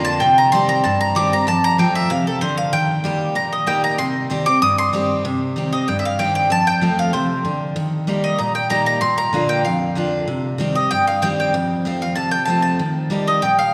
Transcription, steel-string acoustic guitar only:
Already playing: F2 D3 A#3 D4 F4
0.22 C3
0.53 D#3 G3 C4 G4
0.85 G2
1.15 D#3 G3 C4 G4
1.32 C4 G4
1.47 F2
1.78 F3 A3 C4 F4
2.10 C3
2.42 D3
2.73 D#3
3.04 G3 A#3 D#4 G4
3.35 A#2
3.66 G3 A#3 D#4 G4
3.99 C3
4.30 D#3 G3 C4 G4
4.46 C4 G4
4.62 G2
4.93 D#3 G3 C4 G4
5.25 C3
5.56 D#3 G3 C4 G4
5.72 C4 G4
5.88 G2
6.19 D#3 G3 C4 G4
6.50 F2
6.81 F3 A3 C4 F4
7.14 C3
7.45 D3
7.76 D#3
8.07 G3 A#3 D#4 G4
8.39 A#2
8.70 G3 A#3 D#4 G4
9.01 A#2
9.33 D3 A#3 D4 F4
9.66 F2
9.95 D3 A#3 D4 F4
10.28 C3
10.58 D#3 G3 C4 G4
10.75 C4 G4
10.91 G2
11.22 D#3 G3 C4 G4
11.54 F2
11.85 F3 A3 C4 F4
12.01 C4 F4
12.17 C3
12.47 F3 A3 C4 F4
12.79 D#3
13.10 G3 A#3 D#4 G4
13.42 A#2

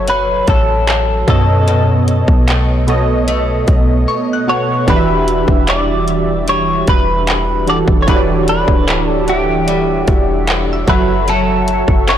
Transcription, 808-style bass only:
Already playing: F#1
0.48 A1
1.28 F#2
2.28 B1
3.68 B1
4.88 E1
5.48 E1
6.88 E1
7.88 E1
8.08 E1
8.68 D1
10.08 E1
10.88 F#1
11.88 F#1

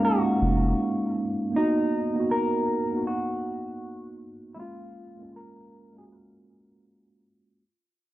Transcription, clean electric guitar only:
0.05 F#4
1.57 D#4
2.31 A#4
3.07 F#4
4.54 E4
4.59 F4
5.36 A#4
5.98 G#4
6.12 A#4

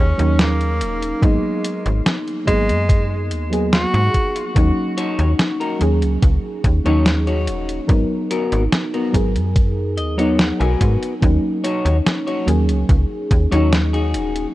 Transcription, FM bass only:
Already playing: D#2
0.19 D#2
0.81 D#1
1.22 G#1
1.86 G#1
2.48 G#1
2.69 F#2
3.31 D#2
3.94 G#2
4.56 D#2
5.19 D#2
5.81 D#2
6.02 C#2
6.23 C#2
6.64 D#2
6.86 D#2
7.48 D#1
7.89 G#1
8.52 G#1
9.14 G#1
9.35 F#2
9.98 D#2
10.60 B1
10.81 G#2
11.22 D#2
11.85 D#2
12.47 D#2
12.69 C#2
12.89 C#2
13.31 D#2
13.52 D#2
14.14 D#1

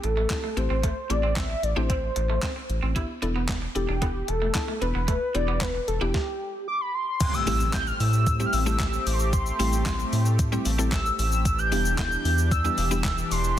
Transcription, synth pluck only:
0.30 A3 C4 E4 G4
0.57 A3 C4 E4 G4
1.10 A3 C4 E4 G4
1.76 A3 C4 E4 G4
2.96 B3 D4 E4 G4
3.22 B3 D4 E4 A4
3.75 B3 D4 E4 A4
4.02 B3 D4 E4 A4
4.55 B3 D4 E4 A4
4.81 B3 D4 E4 A4
5.34 B3 D4 E4 G4
6.01 B3 D4 E4 G4
7.47 G3 A3 C4 E4 G4
7.73 G3 A3 C4 E4 G4
8.40 G3 A3 C4 E4 G4
8.66 G3 A3 C4 E4 G4
9.59 G3 A3 C4 E4 G4
9.86 G3 A3 C4 E4 G4
10.52 G3 A3 C4 E4 G4
10.78 G3 A3 C4 E4 A4
11.72 G3 B3 D4 E4 G4
11.98 G3 B3 D4 E4 A4
12.64 G3 B3 D4 E4 G4
12.91 G3 B3 D4 E4 G4

